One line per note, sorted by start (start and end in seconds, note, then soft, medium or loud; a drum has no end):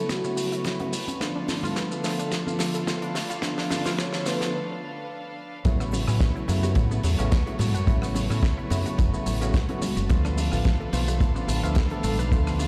0.00 0.21 C#3 medium
0.00 0.21 F#3 medium
0.00 0.21 A3 medium
0.00 1.17 A3 medium
0.00 0.21 B3 medium
0.00 0.22 E4 medium
0.00 1.17 F#4 medium
0.00 0.12 A4 loud
0.00 5.61 B4 medium
0.00 1.17 C#5 medium
0.09 0.15 F#3 medium
0.09 0.93 F#4 loud
0.09 kick loud
0.09 snare medium
0.09 closed hi-hat medium
0.09 shaker soft
0.09 shaker medium
0.24 0.62 C#3 medium
0.24 0.62 F#3 medium
0.24 0.62 A3 medium
0.24 0.62 B3 medium
0.24 0.29 C#4 loud
0.24 0.62 E4 medium
0.24 shaker soft
0.37 0.43 F#3 loud
0.37 open hi-hat loud
0.37 shaker medium
0.52 0.59 E4 medium
0.52 closed hi-hat medium
0.52 shaker soft
0.64 0.91 C#3 medium
0.64 0.68 F#3 medium
0.64 0.91 F#3 medium
0.64 0.91 A3 medium
0.64 0.92 B3 medium
0.64 0.92 E4 loud
0.64 kick loud
0.64 snare medium
0.64 closed hi-hat medium
0.64 shaker medium
0.64 shaker soft
0.80 0.85 B3 loud
0.80 closed hi-hat medium
0.80 high conga medium
0.93 0.98 F#3 medium
0.93 open hi-hat loud
0.93 shaker medium
1.07 1.11 C#4 medium
1.07 closed hi-hat medium
1.07 high conga medium
1.07 shaker soft
1.20 1.60 D3 loud
1.20 1.60 F3 medium
1.20 1.26 A3 medium
1.20 1.60 A3 medium
1.20 1.60 B3 medium
1.20 5.61 D4 medium
1.20 1.50 D4 loud
1.20 1.60 F4 loud
1.20 5.61 A4 medium
1.20 5.61 F5 medium
1.20 kick loud
1.20 snare medium
1.20 closed hi-hat medium
1.20 shaker soft
1.20 shaker medium
1.36 1.43 D4 loud
1.48 1.57 A3 medium
1.48 1.78 F4 loud
1.48 snare medium
1.48 open hi-hat loud
1.48 high conga medium
1.48 shaker medium
1.63 2.01 D3 medium
1.63 2.01 F3 medium
1.63 2.01 A3 medium
1.63 2.01 B3 medium
1.63 1.68 F4 loud
1.63 2.01 F4 medium
1.63 low conga medium
1.63 shaker soft
1.63 shaker medium
1.76 1.80 A3 medium
1.76 2.06 B4 loud
1.76 kick loud
1.76 snare medium
1.76 closed hi-hat medium
1.76 shaker medium
1.91 1.94 A4 medium
1.91 shaker medium
2.04 2.43 D3 medium
2.04 2.43 F3 medium
2.04 2.43 A3 medium
2.04 2.07 A3 medium
2.04 2.43 B3 medium
2.04 2.44 F4 loud
2.04 2.34 A4 loud
2.04 snare medium
2.04 open hi-hat loud
2.04 shaker medium
2.19 2.22 D4 medium
2.19 closed hi-hat medium
2.19 shaker soft
2.32 2.37 A3 medium
2.32 3.15 F4 loud
2.32 kick loud
2.32 snare medium
2.32 closed hi-hat medium
2.32 shaker medium
2.32 shaker soft
2.46 2.84 D3 medium
2.46 2.84 F3 medium
2.46 2.84 A3 medium
2.46 2.84 B3 medium
2.46 2.52 F4 loud
2.46 2.84 F4 medium
2.46 high conga medium
2.46 shaker soft
2.59 2.65 A3 loud
2.59 snare medium
2.59 open hi-hat loud
2.59 shaker medium
2.74 2.82 A4 medium
2.74 closed hi-hat medium
2.74 shaker soft
2.87 3.13 D3 medium
2.87 3.13 F3 medium
2.87 2.91 A3 medium
2.87 3.14 A3 medium
2.87 3.14 B3 medium
2.87 3.14 F4 medium
2.87 kick loud
2.87 snare medium
2.87 closed hi-hat medium
2.87 shaker soft
2.87 shaker medium
3.02 3.07 D4 loud
3.02 closed hi-hat medium
3.15 3.21 A3 medium
3.15 snare medium
3.15 open hi-hat loud
3.15 shaker medium
3.30 3.33 F4 medium
3.30 closed hi-hat soft
3.30 shaker medium
3.42 3.82 D3 medium
3.42 3.82 F3 medium
3.42 3.48 A3 medium
3.42 3.82 A3 medium
3.42 3.82 B3 medium
3.42 3.72 D4 loud
3.42 3.82 F4 loud
3.42 kick loud
3.42 snare medium
3.42 closed hi-hat medium
3.42 shaker medium
3.58 3.65 D4 loud
3.58 snare medium
3.58 open hi-hat medium
3.70 3.79 A3 medium
3.70 4.00 F4 loud
3.70 snare medium
3.70 open hi-hat loud
3.70 high conga medium
3.70 shaker medium
3.85 4.23 D3 medium
3.85 4.23 F3 medium
3.85 4.23 A3 medium
3.85 4.23 B3 medium
3.85 3.90 F4 loud
3.85 4.24 F4 medium
3.85 snare medium
3.85 shaker medium
3.85 shaker soft
3.98 4.02 A3 medium
3.98 4.28 C#5 loud
3.98 kick loud
3.98 snare loud
3.98 closed hi-hat medium
3.98 shaker soft
3.98 shaker medium
4.13 4.16 A4 medium
4.13 snare medium
4.13 shaker medium
4.26 4.54 D3 medium
4.26 4.54 F3 medium
4.26 4.30 A3 medium
4.26 4.54 A3 medium
4.26 4.54 B3 medium
4.26 4.54 F4 medium
4.26 4.54 B4 loud
4.26 snare loud
4.26 open hi-hat loud
4.26 shaker medium
4.41 4.44 D4 medium
4.41 snare medium
4.41 closed hi-hat medium
4.41 shaker soft
5.65 6.04 A1 medium
5.65 6.04 C#3 loud
5.65 5.71 F#3 loud
5.65 6.04 F#3 medium
5.65 10.05 A3 medium
5.65 6.04 A3 medium
5.65 6.05 B3 medium
5.65 6.05 E4 loud
5.65 10.05 F#4 medium
5.65 12.68 B4 medium
5.65 10.05 C#5 medium
5.65 kick loud
5.65 closed hi-hat medium
5.65 shaker medium
5.65 shaker soft
5.80 5.87 B3 medium
5.80 cross-stick medium
5.80 shaker soft
5.80 shaker medium
5.91 5.98 F#3 medium
5.91 open hi-hat loud
5.91 high bongo medium
5.91 high conga medium
5.91 shaker medium
5.94 shaker medium
6.08 6.18 A2 medium
6.08 6.45 C#3 medium
6.08 6.45 F#3 medium
6.08 6.46 A3 medium
6.08 6.46 B3 medium
6.08 6.15 C#4 medium
6.08 6.46 E4 medium
6.08 cross-stick medium
6.08 shaker medium
6.08 shaker soft
6.21 6.24 F#3 medium
6.21 kick loud
6.21 snare loud
6.21 closed hi-hat loud
6.21 shaker medium
6.21 shaker soft
6.36 6.43 E4 medium
6.36 shaker soft
6.48 6.76 F#2 medium
6.48 6.88 C#3 medium
6.48 6.57 F#3 loud
6.48 6.88 F#3 medium
6.48 6.88 A3 medium
6.48 6.88 B3 medium
6.48 6.88 E4 medium
6.48 open hi-hat loud
6.48 shaker loud
6.48 shaker medium
6.63 6.68 F#4 medium
6.63 closed hi-hat medium
6.63 high bongo medium
6.63 shaker medium
6.63 shaker soft
6.75 6.99 A2 loud
6.75 6.82 F#3 loud
6.75 kick loud
6.75 closed hi-hat medium
6.75 shaker medium
6.75 shaker soft
6.91 7.16 C#3 medium
6.91 7.16 F#3 medium
6.91 7.16 A3 medium
6.91 6.98 B3 medium
6.91 7.16 B3 medium
6.91 7.17 E4 medium
6.91 high conga medium
6.91 shaker soft
7.03 7.16 E2 loud
7.03 7.09 F#3 medium
7.03 open hi-hat loud
7.03 high bongo medium
7.03 shaker medium
7.03 shaker loud
7.19 7.30 A1 loud
7.19 7.34 C#3 loud
7.19 7.34 F#3 medium
7.19 7.35 A3 medium
7.19 7.35 B3 medium
7.19 7.24 C#4 loud
7.19 7.35 F#4 loud
7.19 closed hi-hat medium
7.19 shaker soft
7.31 7.35 F#3 medium
7.31 kick loud
7.31 snare loud
7.31 closed hi-hat medium
7.31 shaker medium
7.31 shaker soft
7.47 7.73 C#3 medium
7.47 7.73 F#3 medium
7.47 7.73 A3 medium
7.47 7.73 B3 medium
7.47 7.54 E4 medium
7.47 7.73 F#4 loud
7.47 closed hi-hat medium
7.47 shaker soft
7.59 7.75 A2 medium
7.59 7.65 F#3 medium
7.59 open hi-hat loud
7.59 low conga medium
7.59 shaker medium
7.74 7.85 F#2 medium
7.74 7.79 F#4 medium
7.74 closed hi-hat medium
7.74 shaker soft
7.87 8.26 A1 medium
7.87 8.27 C#3 loud
7.87 7.93 F#3 loud
7.87 8.27 F#3 medium
7.87 8.27 A3 medium
7.87 8.27 B3 medium
7.87 8.27 E4 loud
7.87 kick loud
7.87 closed hi-hat loud
7.87 shaker medium
8.02 8.09 B3 medium
8.02 cross-stick medium
8.02 open hi-hat medium
8.02 shaker soft
8.02 shaker medium
8.15 8.20 F#3 medium
8.15 open hi-hat loud
8.15 high bongo medium
8.15 high conga medium
8.15 shaker medium
8.30 8.41 A2 loud
8.30 8.68 C#3 medium
8.30 8.68 F#3 medium
8.30 8.68 A3 medium
8.30 8.68 B3 medium
8.30 8.37 C#4 medium
8.30 8.68 E4 medium
8.30 cross-stick medium
8.30 shaker soft
8.42 8.46 F#3 medium
8.42 kick loud
8.42 snare loud
8.42 closed hi-hat loud
8.42 shaker medium
8.44 shaker medium
8.58 8.65 E4 medium
8.58 shaker soft
8.70 8.83 F#2 loud
8.70 9.10 C#3 medium
8.70 8.79 F#3 loud
8.70 9.10 F#3 medium
8.70 9.10 A3 medium
8.70 9.10 B3 medium
8.70 9.10 E4 loud
8.70 open hi-hat loud
8.70 shaker loud
8.70 shaker medium
8.85 8.90 F#4 medium
8.85 closed hi-hat medium
8.85 high bongo medium
8.85 shaker soft
8.98 9.11 F#1 loud
8.98 9.04 F#3 loud
8.98 kick loud
8.98 closed hi-hat medium
8.98 shaker soft
8.98 shaker medium
9.13 9.38 C#3 medium
9.13 9.38 F#3 medium
9.13 9.38 A3 medium
9.13 9.21 B3 medium
9.13 9.39 B3 medium
9.13 9.39 E4 medium
9.13 muted fingered electric bass stroke soft
9.13 shaker soft
9.26 9.65 A1 medium
9.26 9.32 F#3 medium
9.26 open hi-hat loud
9.26 shaker medium
9.41 9.57 C#3 loud
9.41 9.57 F#3 medium
9.41 9.57 A3 medium
9.41 9.57 B3 medium
9.41 9.46 C#4 loud
9.41 9.57 F#4 loud
9.41 closed hi-hat medium
9.41 shaker medium
9.54 9.57 F#3 medium
9.54 kick loud
9.54 snare loud
9.54 closed hi-hat medium
9.54 shaker medium
9.69 9.95 C#3 medium
9.69 9.95 F#3 medium
9.69 9.95 A3 medium
9.69 9.95 B3 medium
9.69 9.76 E4 medium
9.69 9.95 F#4 loud
9.69 closed hi-hat soft
9.69 high conga medium
9.69 shaker soft
9.82 9.87 F#3 medium
9.82 muted fingered electric bass stroke soft
9.82 open hi-hat loud
9.82 high bongo medium
9.82 low conga medium
9.82 shaker loud
9.82 shaker medium
9.97 10.07 F#1 medium
9.97 10.02 F#4 medium
9.97 closed hi-hat medium
9.97 high conga medium
9.97 shaker medium
9.97 shaker soft
10.09 10.49 D2 loud
10.09 10.49 D3 loud
10.09 10.49 F3 medium
10.09 10.15 A3 loud
10.09 10.49 A3 medium
10.09 10.49 B3 medium
10.09 12.68 D4 medium
10.09 10.49 F4 loud
10.09 12.68 A4 medium
10.09 12.68 F5 medium
10.09 kick loud
10.09 closed hi-hat medium
10.09 shaker medium
10.24 10.32 D4 medium
10.24 cross-stick medium
10.24 shaker soft
10.37 10.43 A3 medium
10.37 open hi-hat loud
10.37 high bongo soft
10.37 high conga medium
10.37 shaker medium
10.52 10.63 A1 loud
10.52 10.90 D3 medium
10.52 10.90 F3 medium
10.52 10.90 A3 medium
10.52 10.90 B3 medium
10.52 10.59 F4 medium
10.52 10.90 F4 medium
10.52 cross-stick medium
10.52 shaker soft
10.52 shaker medium
10.64 10.68 A3 medium
10.64 kick loud
10.64 snare loud
10.64 closed hi-hat medium
10.64 shaker soft
10.64 shaker medium
10.80 10.87 A4 medium
10.80 shaker soft
10.93 11.20 B1 loud
10.93 11.32 D3 medium
10.93 11.32 F3 medium
10.93 11.01 A3 loud
10.93 11.32 A3 medium
10.93 11.32 B3 medium
10.93 11.33 F4 loud
10.93 open hi-hat loud
10.93 shaker medium
11.08 11.13 B4 medium
11.08 closed hi-hat medium
11.08 high bongo medium
11.08 shaker soft
11.20 11.44 A1 loud
11.20 11.26 A3 loud
11.20 kick loud
11.20 closed hi-hat medium
11.20 shaker soft
11.20 shaker medium
11.35 11.60 D3 medium
11.35 11.60 F3 medium
11.35 11.61 A3 medium
11.35 11.61 B3 medium
11.35 11.43 D4 medium
11.35 11.61 F4 medium
11.35 high conga medium
11.35 shaker soft
11.48 11.61 A1 loud
11.48 11.54 A3 medium
11.48 open hi-hat loud
11.48 high bongo medium
11.48 shaker loud
11.48 shaker medium
11.63 11.74 D2 medium
11.63 11.79 D3 loud
11.63 11.79 F3 medium
11.63 11.79 A3 medium
11.63 11.79 B3 medium
11.63 11.68 F4 loud
11.63 11.79 A4 loud
11.63 closed hi-hat medium
11.63 shaker soft
11.75 11.80 A3 medium
11.75 kick loud
11.75 snare loud
11.75 closed hi-hat medium
11.75 shaker medium
11.90 12.17 D3 loud
11.90 12.17 F3 medium
11.90 12.18 A3 medium
11.90 12.18 B3 medium
11.90 11.98 A4 medium
11.90 12.18 A4 loud
11.90 closed hi-hat medium
11.90 shaker soft
12.03 12.19 A1 medium
12.03 12.10 A3 medium
12.03 open hi-hat loud
12.03 low conga medium
12.03 shaker medium
12.19 12.30 B1 medium
12.19 12.24 B4 medium
12.19 closed hi-hat medium
12.19 shaker soft
12.32 12.68 D3 loud
12.32 12.68 F3 medium
12.32 12.37 A3 loud
12.32 12.68 A3 medium
12.32 12.68 B3 medium
12.32 12.68 F4 loud
12.32 kick loud
12.32 closed hi-hat medium
12.32 shaker medium
12.32 shaker soft
12.47 12.54 D4 medium
12.47 cross-stick medium
12.47 open hi-hat medium
12.47 shaker medium
12.47 shaker soft
12.59 12.65 A3 medium
12.59 open hi-hat loud
12.59 high bongo medium
12.59 high conga medium
12.59 shaker medium
12.59 shaker loud